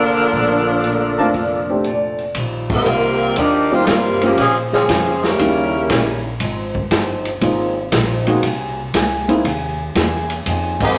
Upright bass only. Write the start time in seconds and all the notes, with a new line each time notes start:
Already playing: F1
0.17 muted upright bass stroke
0.33 A#1
1.18 F2
1.34 F1
2.35 A#1
2.85 C2
3.37 D#2
3.87 G2
4.38 A#2
4.89 F2
5.39 D#2
5.90 A#1
6.40 G#1
6.91 G1
7.41 G#1
7.92 A#1
8.43 C2
8.94 C#2
9.45 D#2
9.95 E2
10.46 F2